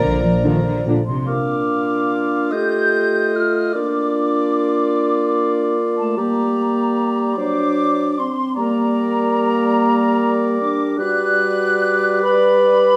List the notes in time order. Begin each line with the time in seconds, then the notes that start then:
Already playing: F3 A#4 D5 A#5
0.03 A#1 D3
0.23 F3
0.44 D3 D#3 F3 D4 F4
0.66 D3
0.86 A#2 D3 F3 D4 F4
1.07 C3 C4 C6
1.27 A#3 D4 F4 F5 D6
2.51 A3 G4 D#5 G6
3.35 F4 F6
3.74 A#3 D4 F4 D5 D6
5.98 A3 A5
6.16 G3 A#3 G4 D5 A#5
7.36 F#3 D4 C5 D6
8.17 C4 C6
8.56 G3 A#3 A#4 D5 A#5
10.60 D4 D6
10.98 G3 F#4 B4 D5 F#6
12.22 B4 B5